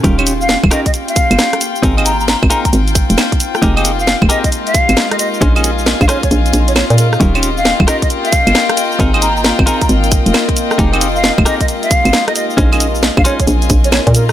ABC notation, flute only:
X:1
M:4/4
L:1/16
Q:"Swing 16ths" 1/4=134
K:Fm
V:1 name="Flute"
z3 f2 z e e z f4- f z2 | z2 b b b z b b z8 | z3 f2 z e e z f4 e e z | z4 z f d d z3 d d B B z |
z3 f2 z e e z f4- f z2 | z2 b b b z b b z8 | z3 f2 z e e z f4 e e z | z4 z f d d z3 d d B B z |]